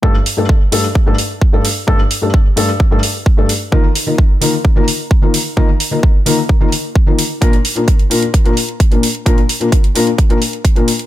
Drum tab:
HH |--o---o---o---o-|--o---o---o---o-|--o---o---o---o-|--o---o---o---o-|
BD |o---o---o---o---|o---o---o---o---|o---o---o---o---|o---o---o---o---|

HH |xxoxxxoxxxoxxxox|xxoxxxoxxxoxxxox|
BD |o---o---o---o---|o---o---o---o---|